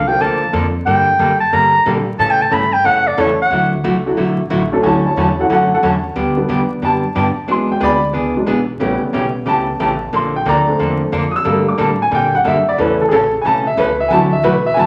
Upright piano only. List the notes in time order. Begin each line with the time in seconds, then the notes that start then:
0.08 F3 A3 A#3 D4 F4
1.86 G3 A3 A#3 D4 G4
3.18 E3 A3 C#4 E4 A4
4.06 F#3 A3 D4 E4 F#4
4.72 F#3 A3 C#4 D4 A4
4.82 F#3 C#4 E4 C#5 G#5
4.86 A5
5.06 C#5 A5
5.19 C#5 A5
5.39 F#3 C#4 E4 A4 F#5
5.52 A4 F#5
5.74 A4 F#5
5.84 A5
6.37 G3 B3 D4
6.85 A5
7.18 A5
7.50 F#3 G#3 D4 C6
7.72 G5
7.83 D5 B5
8.36 F#3 G#3 D4
8.81 G3 B3 C#4
9.48 A5
9.82 A5
10.16 C6
10.36 G5
10.48 D5 A#5
10.67 A3 C4 D4
11.31 D#6
11.36 E6
11.46 G3 A3 A#3
11.68 D6
11.81 A5
12.02 G#5
12.15 G5
12.35 F#5
12.47 E5
12.69 D5
12.78 E3 A3 C#4 B4
13.01 A4
13.09 G#4
13.13 A4
13.41 G#5
13.46 A5
13.67 E5
13.80 B4
14.00 E5
14.08 E3 F#3 D4 G#5
14.12 A5
14.33 E5
14.44 B4
14.66 E5
14.74 G#5
14.79 A5